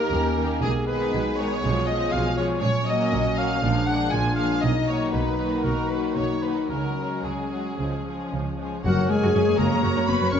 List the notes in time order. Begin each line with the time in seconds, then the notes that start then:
Already playing: D#3 A#3 G4 A#4
0.12 D#2 C#4
0.38 D#3 A#3 G4
0.61 B1 B2 G#3 B3 G#4
0.87 D#3 G#3 D#4 G#4 B4
1.12 B1 B2
1.36 D#3 G#3 D#4 G#4 C#5
1.61 B1 B2 F3 G#3 C#4 F4 G#4
1.86 F3 G#3 C#4 G#4 D#5
2.12 B1 B2 F5
2.36 F3 G#3 C#4 G#4 C#5
2.61 A#1 A#2 F#3 C#4 C#5
2.86 F#3 A#3 C#4 F#4 D#5
3.12 A#1 A#2
3.37 F#3 A#3 C#4 F#4 F5
3.61 A#1 A#2 F3 G#3 A#3 D4 G#4
3.87 F3 A#3 D4 G#4 F#5
4.11 A#1 A#2 F4 G#5
4.36 F3 A#3 D4 G#4 F5
4.61 B1 B2 F#3 D#4 D#5
4.87 D#3 A#3 D#4 F#4 C#5
5.12 B1 B2 B4
5.38 D#3 A#3 D#4 F#4
5.63 B1 B2 F#4 A#4
5.89 D#3 A#3 D#4 F#4 B4
6.15 B1 B2 D#4 C#5
6.42 D#3 A#3 D#4 F#4 B4
6.68 C#2 C#3 F#3 G#3 C#4 F#4 A#4
6.98 F#3 G#3 C#4 F#4
7.24 C#2 C#3 G#4
7.52 F#3 G#3 C#4 F#4
7.78 C#2 C#3 F3 G#3 C#4 G#4
8.05 F3 G#3 C#4 G#4
8.32 C#2 C#3
8.58 F3 G#3 C#4 G#4
8.84 F#1 F#2 F#3 F#4 A#4 C#5 F#5
9.09 G#3 G#4 G#5
9.22 F#2 F#4
9.34 F#1 F#2 C#4 G#4
9.47 F#2 A#3
9.58 F#1 F#2 A#3 F#4 A#4 A#5
9.72 F#2 C#4
9.83 F#1 F#2 F#4
9.96 F#2 C#4
10.07 F#1 F#2 A#3 B3 B4 B5
10.20 F#2 F#4
10.31 F#1 F#2 C#4 A#4 C#5 C#6